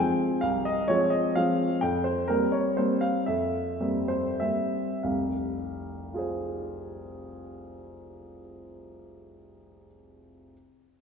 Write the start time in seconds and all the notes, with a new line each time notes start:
Already playing: F3 G#3 C4 G5
0.41 C2 F5
0.65 D#5
0.88 F3 G#3 C4 C#5
1.10 D#5
1.35 F3 G#3 C4 F5
1.81 F2 G5
2.04 C5
2.28 G3 A#3 C4 A#4
2.52 C#5
2.77 G3 A#3 C4 C5
3.01 F5
3.26 F2 E5
3.80 G3 A#3 C4
4.08 C5
4.40 G3 A#3 C4 E5
5.03 F1 C2 F5
6.14 F4 G#4
6.19 C5